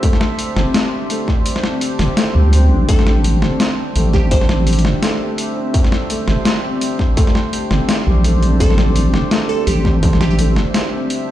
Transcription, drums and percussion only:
0.03 kick loud
0.03 closed hi-hat medium
0.13 snare medium
0.21 snare medium
0.39 closed hi-hat medium
0.56 snare medium
0.74 snare loud
0.74 closed hi-hat medium
1.10 closed hi-hat medium
1.28 kick medium
1.28 snare soft
1.46 closed hi-hat medium
1.56 snare medium
1.64 snare medium
1.81 closed hi-hat medium
1.99 snare medium
1.99 closed hi-hat soft
2.17 snare loud
2.17 closed hi-hat medium
2.53 closed hi-hat medium
2.89 kick loud
2.89 closed hi-hat medium
2.99 snare medium
3.07 snare medium
3.24 closed hi-hat medium
3.42 snare medium
3.60 snare loud
3.60 closed hi-hat medium
3.96 closed hi-hat medium
4.13 kick medium
4.13 snare soft
4.31 kick loud
4.31 closed hi-hat medium
4.41 snare medium
4.49 snare medium
4.67 closed hi-hat medium
4.73 closed hi-hat medium
4.79 closed hi-hat soft
4.85 snare medium
5.03 snare loud
5.03 closed hi-hat medium
5.38 closed hi-hat medium
5.74 kick loud
5.74 closed hi-hat medium
5.84 snare medium
5.92 snare medium
6.10 closed hi-hat medium
6.28 snare medium
6.45 snare loud
6.45 closed hi-hat medium
6.81 closed hi-hat medium
6.99 kick medium
6.99 snare soft
7.17 kick loud
7.17 closed hi-hat medium
7.27 snare medium
7.35 snare medium
7.53 closed hi-hat medium
7.71 snare medium
7.89 snare loud
7.89 closed hi-hat medium
8.24 closed hi-hat medium
8.43 closed hi-hat soft
8.60 kick loud
8.60 closed hi-hat medium
8.70 snare soft
8.78 snare medium
8.96 closed hi-hat medium
9.14 snare medium
9.31 snare loud
9.31 closed hi-hat medium
9.67 closed hi-hat medium
9.85 kick medium
9.85 snare soft
10.03 kick loud
10.03 closed hi-hat medium
10.13 snare medium
10.21 snare medium
10.39 closed hi-hat medium
10.56 snare medium
10.74 snare loud
10.74 closed hi-hat medium
11.10 closed hi-hat medium

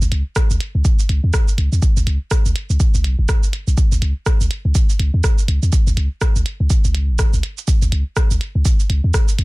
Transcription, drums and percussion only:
0.02 shaker soft
0.12 closed hi-hat loud
0.36 kick loud
0.36 cross-stick loud
0.36 shaker medium
0.50 shaker soft
0.60 closed hi-hat loud
0.85 kick loud
0.85 shaker medium
0.99 shaker soft
1.09 closed hi-hat loud
1.34 kick loud
1.34 cross-stick loud
1.34 shaker medium
1.48 shaker soft
1.58 closed hi-hat loud
1.72 shaker soft
1.82 kick loud
1.82 shaker medium
1.97 shaker soft
2.07 closed hi-hat loud
2.31 kick loud
2.31 cross-stick medium
2.31 shaker medium
2.46 shaker soft
2.56 closed hi-hat loud
2.70 shaker soft
2.80 kick loud
2.80 shaker medium
2.94 shaker soft
3.04 closed hi-hat medium
3.29 kick loud
3.29 cross-stick medium
3.29 shaker medium
3.43 shaker soft
3.53 closed hi-hat loud
3.68 shaker soft
3.78 kick loud
3.78 shaker medium
3.92 shaker soft
4.02 closed hi-hat medium
4.26 kick loud
4.26 cross-stick medium
4.26 shaker medium
4.41 shaker soft
4.51 closed hi-hat medium
4.75 kick loud
4.75 shaker medium
4.90 shaker soft
5.00 closed hi-hat medium
5.24 kick loud
5.24 cross-stick medium
5.24 shaker medium
5.38 shaker soft
5.48 closed hi-hat medium
5.63 shaker soft
5.73 kick loud
5.73 shaker medium
5.87 shaker soft
5.97 closed hi-hat medium
6.21 kick loud
6.21 cross-stick medium
6.21 shaker medium
6.36 shaker soft
6.46 closed hi-hat medium
6.70 kick loud
6.70 shaker medium
6.85 shaker soft
6.95 closed hi-hat medium
7.19 kick loud
7.19 cross-stick medium
7.19 shaker medium
7.33 shaker soft
7.43 closed hi-hat medium
7.58 shaker soft
7.68 kick loud
7.68 shaker medium
7.82 shaker soft
7.92 closed hi-hat medium
8.17 kick loud
8.17 cross-stick medium
8.17 shaker medium
8.31 shaker soft
8.41 closed hi-hat medium
8.65 kick loud
8.65 shaker medium
8.80 shaker soft
8.90 closed hi-hat medium
9.14 kick loud
9.14 cross-stick medium
9.14 shaker medium
9.29 shaker soft
9.39 closed hi-hat medium

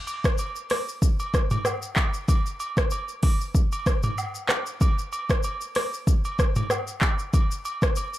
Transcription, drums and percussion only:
0.07 high agogo medium
0.07 shaker medium
0.24 kick loud
0.24 cross-stick loud
0.24 shaker medium
0.38 high agogo medium
0.38 shaker medium
0.56 shaker medium
0.70 cross-stick loud
0.70 open hi-hat medium
0.70 high agogo medium
0.88 shaker medium
1.02 kick loud
1.02 shaker medium
1.20 high agogo medium
1.20 shaker medium
1.34 kick medium
1.34 cross-stick loud
1.34 shaker medium
1.50 mid tom medium
1.50 high agogo medium
1.50 shaker medium
1.65 cross-stick medium
1.65 low woodblock medium
1.65 shaker medium
1.82 shaker medium
1.96 kick medium
1.96 clap loud
1.96 high agogo medium
2.14 shaker soft
2.28 kick loud
2.28 high agogo medium
2.28 shaker medium
2.46 shaker medium
2.60 high agogo medium
2.60 shaker medium
2.77 kick loud
2.77 cross-stick loud
2.77 shaker medium
2.91 high agogo medium
2.91 shaker medium
3.08 shaker medium
3.23 kick loud
3.23 open hi-hat medium
3.23 high agogo medium
3.41 shaker medium
3.55 kick loud
3.55 shaker medium
3.72 high agogo medium
3.72 shaker soft
3.86 kick loud
3.86 cross-stick loud
3.86 shaker medium
4.03 mid tom medium
4.03 high agogo medium
4.03 shaker medium
4.18 low woodblock medium
4.18 shaker medium
4.35 shaker medium
4.49 cross-stick loud
4.49 clap loud
4.49 high agogo medium
4.66 shaker soft
4.81 kick loud
4.81 high agogo medium
4.81 shaker medium
4.99 shaker medium
5.12 high agogo medium
5.12 shaker medium
5.30 kick loud
5.30 cross-stick loud
5.30 shaker medium
5.43 high agogo medium
5.43 shaker medium
5.61 shaker medium
5.75 cross-stick loud
5.75 open hi-hat medium
5.75 high agogo medium
5.94 shaker medium
6.07 kick loud
6.07 shaker medium
6.25 high agogo medium
6.25 shaker medium
6.39 kick loud
6.39 cross-stick loud
6.39 shaker medium
6.56 mid tom loud
6.56 high agogo medium
6.56 shaker medium
6.70 cross-stick medium
6.70 low woodblock medium
6.70 shaker medium
6.87 shaker medium
7.01 kick medium
7.01 clap loud
7.01 high agogo medium
7.19 shaker soft
7.33 kick loud
7.33 high agogo medium
7.33 shaker medium
7.51 shaker medium
7.65 high agogo medium
7.65 shaker medium
7.82 kick loud
7.82 cross-stick loud
7.82 shaker medium
7.96 high agogo medium
7.96 shaker medium
8.14 shaker medium

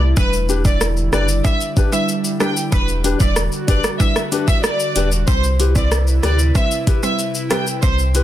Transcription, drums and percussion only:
0.17 kick loud
0.17 shaker medium
0.33 shaker soft
0.49 shaker medium
0.65 kick medium
0.65 shaker medium
0.81 cross-stick medium
0.81 shaker medium
0.97 shaker soft
1.13 cross-stick medium
1.13 shaker medium
1.28 shaker medium
1.45 kick medium
1.45 shaker medium
1.61 shaker medium
1.77 kick medium
1.77 shaker medium
1.93 shaker medium
2.09 shaker medium
2.25 shaker medium
2.40 cross-stick medium
2.40 shaker medium
2.57 shaker medium
2.72 kick loud
2.72 shaker medium
2.88 shaker medium
3.04 closed hi-hat medium
3.04 shaker medium
3.20 kick medium
3.20 shaker medium
3.36 cross-stick medium
3.36 shaker medium
3.52 shaker soft
3.68 kick medium
3.68 closed hi-hat medium
3.68 shaker medium
3.84 cross-stick medium
3.84 shaker medium
4.00 kick medium
4.00 shaker medium
4.16 cross-stick medium
4.16 shaker medium
4.32 closed hi-hat medium
4.32 shaker medium
4.48 kick medium
4.48 shaker medium
4.64 cross-stick loud
4.64 shaker medium
4.80 shaker medium
4.96 closed hi-hat medium
4.96 shaker medium
5.12 shaker medium
5.28 kick loud
5.28 shaker medium
5.44 shaker medium
5.60 closed hi-hat medium
5.60 shaker medium
5.76 kick medium
5.76 shaker medium
5.92 cross-stick medium
5.92 shaker medium
6.07 shaker soft
6.23 cross-stick medium
6.23 closed hi-hat medium
6.23 shaker medium
6.39 shaker medium
6.55 kick medium
6.55 shaker medium
6.71 shaker medium
6.87 kick medium
6.87 closed hi-hat medium
6.87 shaker medium
7.03 shaker medium
7.19 shaker medium
7.35 shaker medium
7.51 cross-stick loud
7.51 closed hi-hat medium
7.51 shaker medium
7.67 shaker medium
7.83 kick loud
7.83 shaker medium
7.99 shaker soft
8.15 closed hi-hat medium
8.15 shaker medium

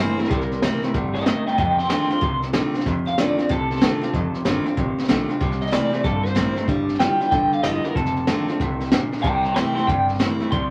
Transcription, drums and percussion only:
0.19 snare soft
0.25 snare soft
0.31 kick loud
0.31 snare soft
0.41 snare soft
0.52 snare soft
0.62 snare loud
0.62 hi-hat pedal medium
0.83 snare soft
0.94 kick loud
0.94 snare soft
1.15 snare soft
1.21 snare soft
1.26 snare loud
1.26 hi-hat pedal medium
1.47 snare soft
1.58 kick loud
1.58 snare soft
1.79 snare soft
1.84 snare soft
1.90 snare loud
1.90 hi-hat pedal medium
2.10 snare soft
2.21 kick loud
2.21 snare soft
2.42 snare soft
2.53 snare loud
2.53 hi-hat pedal loud
2.74 snare soft
2.80 snare soft
2.86 kick loud
2.86 snare soft
3.07 snare soft
3.18 snare loud
3.18 hi-hat pedal medium
3.39 snare soft
3.50 kick loud
3.50 snare soft
3.71 snare soft
3.76 snare soft
3.82 snare loud
3.82 hi-hat pedal loud
4.02 snare soft
4.13 kick loud
4.13 snare soft
4.34 snare soft
4.45 snare loud
4.45 hi-hat pedal medium
4.66 snare soft
4.77 kick loud
4.77 snare soft
4.98 snare soft
5.04 snare soft
5.09 snare loud
5.09 hi-hat pedal medium
5.30 snare soft
5.41 kick loud
5.41 snare soft
5.52 snare soft
5.62 snare soft
5.67 snare soft
5.73 snare loud
5.73 hi-hat pedal medium
5.93 snare soft
6.04 kick loud
6.04 snare soft
6.25 snare soft
6.36 snare loud
6.36 hi-hat pedal medium
6.57 snare soft
6.68 kick loud
6.68 snare soft
6.89 snare soft
6.95 snare soft
7.00 snare loud
7.00 hi-hat pedal medium
7.21 snare soft
7.32 kick loud
7.32 snare soft
7.53 snare soft
7.63 snare loud
7.63 hi-hat pedal medium
7.84 snare soft
7.95 kick loud
7.95 snare soft
8.06 snare soft
8.16 snare soft
8.27 snare loud
8.27 hi-hat pedal medium
8.48 snare soft
8.60 kick loud
8.60 snare soft
8.80 snare soft
8.86 snare soft
8.92 snare loud
8.92 hi-hat pedal medium
9.12 snare soft
9.18 snare soft
9.23 kick loud
9.23 snare soft
9.44 snare soft
9.56 snare loud
9.56 hi-hat pedal medium
9.77 snare soft
9.88 kick loud
9.88 snare soft
10.08 snare soft
10.14 snare soft
10.20 snare loud
10.20 hi-hat pedal medium
10.41 snare soft
10.52 kick loud
10.52 snare soft

